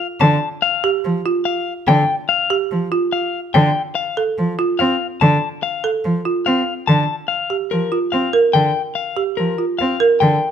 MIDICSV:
0, 0, Header, 1, 4, 480
1, 0, Start_track
1, 0, Tempo, 416667
1, 725, Time_signature, 4, 2, 24, 8
1, 12116, End_track
2, 0, Start_track
2, 0, Title_t, "Clean electric guitar"
2, 0, Program_c, 0, 27
2, 240, Note_on_c, 0, 81, 80
2, 555, Note_off_c, 0, 81, 0
2, 717, Note_on_c, 0, 77, 83
2, 1034, Note_off_c, 0, 77, 0
2, 1674, Note_on_c, 0, 77, 61
2, 1993, Note_off_c, 0, 77, 0
2, 2163, Note_on_c, 0, 79, 88
2, 2476, Note_off_c, 0, 79, 0
2, 2636, Note_on_c, 0, 77, 76
2, 2953, Note_off_c, 0, 77, 0
2, 3600, Note_on_c, 0, 77, 56
2, 3915, Note_off_c, 0, 77, 0
2, 4080, Note_on_c, 0, 79, 74
2, 4395, Note_off_c, 0, 79, 0
2, 4553, Note_on_c, 0, 77, 69
2, 4872, Note_off_c, 0, 77, 0
2, 5518, Note_on_c, 0, 77, 54
2, 5834, Note_off_c, 0, 77, 0
2, 6005, Note_on_c, 0, 81, 74
2, 6316, Note_off_c, 0, 81, 0
2, 6484, Note_on_c, 0, 77, 67
2, 6796, Note_off_c, 0, 77, 0
2, 7442, Note_on_c, 0, 77, 51
2, 7756, Note_off_c, 0, 77, 0
2, 7919, Note_on_c, 0, 81, 74
2, 8234, Note_off_c, 0, 81, 0
2, 8387, Note_on_c, 0, 77, 61
2, 8710, Note_off_c, 0, 77, 0
2, 8883, Note_on_c, 0, 70, 57
2, 9196, Note_off_c, 0, 70, 0
2, 9354, Note_on_c, 0, 77, 51
2, 9673, Note_off_c, 0, 77, 0
2, 9832, Note_on_c, 0, 79, 74
2, 10152, Note_off_c, 0, 79, 0
2, 10313, Note_on_c, 0, 77, 57
2, 10632, Note_off_c, 0, 77, 0
2, 10796, Note_on_c, 0, 70, 48
2, 11113, Note_off_c, 0, 70, 0
2, 11273, Note_on_c, 0, 77, 48
2, 11592, Note_off_c, 0, 77, 0
2, 11754, Note_on_c, 0, 79, 65
2, 12073, Note_off_c, 0, 79, 0
2, 12116, End_track
3, 0, Start_track
3, 0, Title_t, "Marimba"
3, 0, Program_c, 1, 12
3, 966, Note_on_c, 1, 67, 64
3, 1277, Note_off_c, 1, 67, 0
3, 1447, Note_on_c, 1, 65, 58
3, 1757, Note_off_c, 1, 65, 0
3, 2884, Note_on_c, 1, 67, 60
3, 3196, Note_off_c, 1, 67, 0
3, 3361, Note_on_c, 1, 65, 60
3, 3675, Note_off_c, 1, 65, 0
3, 4806, Note_on_c, 1, 69, 61
3, 5117, Note_off_c, 1, 69, 0
3, 5285, Note_on_c, 1, 65, 61
3, 5596, Note_off_c, 1, 65, 0
3, 6727, Note_on_c, 1, 69, 58
3, 7037, Note_off_c, 1, 69, 0
3, 7204, Note_on_c, 1, 65, 53
3, 7516, Note_off_c, 1, 65, 0
3, 8641, Note_on_c, 1, 67, 51
3, 8955, Note_off_c, 1, 67, 0
3, 9122, Note_on_c, 1, 65, 53
3, 9435, Note_off_c, 1, 65, 0
3, 9600, Note_on_c, 1, 70, 66
3, 9915, Note_off_c, 1, 70, 0
3, 10559, Note_on_c, 1, 67, 53
3, 10874, Note_off_c, 1, 67, 0
3, 11041, Note_on_c, 1, 65, 46
3, 11355, Note_off_c, 1, 65, 0
3, 11522, Note_on_c, 1, 70, 64
3, 11836, Note_off_c, 1, 70, 0
3, 12116, End_track
4, 0, Start_track
4, 0, Title_t, "Cello"
4, 0, Program_c, 2, 42
4, 236, Note_on_c, 2, 50, 83
4, 419, Note_off_c, 2, 50, 0
4, 1206, Note_on_c, 2, 53, 58
4, 1385, Note_off_c, 2, 53, 0
4, 2156, Note_on_c, 2, 50, 83
4, 2339, Note_off_c, 2, 50, 0
4, 3124, Note_on_c, 2, 53, 52
4, 3304, Note_off_c, 2, 53, 0
4, 4084, Note_on_c, 2, 50, 85
4, 4264, Note_off_c, 2, 50, 0
4, 5048, Note_on_c, 2, 53, 53
4, 5227, Note_off_c, 2, 53, 0
4, 5526, Note_on_c, 2, 60, 66
4, 5705, Note_off_c, 2, 60, 0
4, 6007, Note_on_c, 2, 50, 79
4, 6186, Note_off_c, 2, 50, 0
4, 6965, Note_on_c, 2, 53, 56
4, 7145, Note_off_c, 2, 53, 0
4, 7448, Note_on_c, 2, 60, 59
4, 7627, Note_off_c, 2, 60, 0
4, 7927, Note_on_c, 2, 50, 72
4, 8106, Note_off_c, 2, 50, 0
4, 8890, Note_on_c, 2, 53, 51
4, 9068, Note_off_c, 2, 53, 0
4, 9366, Note_on_c, 2, 60, 51
4, 9545, Note_off_c, 2, 60, 0
4, 9842, Note_on_c, 2, 50, 63
4, 10023, Note_off_c, 2, 50, 0
4, 10808, Note_on_c, 2, 53, 47
4, 10987, Note_off_c, 2, 53, 0
4, 11294, Note_on_c, 2, 60, 51
4, 11470, Note_off_c, 2, 60, 0
4, 11766, Note_on_c, 2, 50, 69
4, 11945, Note_off_c, 2, 50, 0
4, 12116, End_track
0, 0, End_of_file